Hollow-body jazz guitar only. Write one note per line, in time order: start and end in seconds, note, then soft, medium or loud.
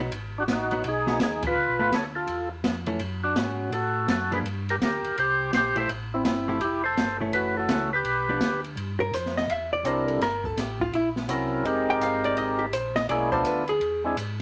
0.00 0.11 F#3 medium
0.00 0.11 B3 medium
0.00 0.11 D#4 medium
0.72 0.83 F#3 medium
0.72 0.84 B3 medium
0.72 0.84 D#4 medium
1.07 1.19 F#3 medium
1.07 1.19 B3 medium
1.07 1.20 D#4 medium
1.79 1.91 A3 medium
1.79 1.91 B3 medium
1.79 1.92 F4 medium
2.87 2.99 E3 medium
2.87 2.99 A3 medium
2.87 3.00 C#4 medium
4.32 4.43 F3 medium
4.32 4.44 A#3 medium
4.32 4.44 D4 medium
5.76 5.87 F3 medium
5.76 5.88 A3 medium
5.76 5.88 E4 medium
5.76 5.88 G4 medium
6.48 6.60 F3 medium
6.48 6.60 A3 medium
6.48 6.60 E4 medium
6.48 6.60 G4 medium
7.20 7.67 E3 medium
7.20 7.67 A3 medium
7.20 7.67 C#4 medium
7.69 7.90 E3 medium
7.69 7.90 A3 medium
7.69 7.90 C#4 medium
8.29 8.40 F3 medium
8.29 8.40 B3 medium
8.29 8.41 D4 medium
9.00 9.13 A#4 medium
9.14 9.36 C5 medium
9.37 9.50 D#5 medium
9.50 9.72 E5 medium
9.73 9.87 D5 medium
9.87 10.09 C5 medium
10.09 10.21 A4 medium
10.23 10.45 A#4 medium
10.45 10.59 A4 medium
10.59 10.81 G4 medium
10.81 10.93 F4 medium
10.95 11.08 E4 medium
11.90 12.02 G5 medium
12.03 12.24 F5 medium
12.25 12.37 D5 medium
12.38 12.60 D#5 medium
12.59 12.72 G4 medium
12.73 12.96 C5 medium
12.96 13.09 D#5 loud
13.09 13.31 D5 medium
13.32 13.45 C5 medium
13.47 13.69 B4 medium
13.69 14.02 G#4 medium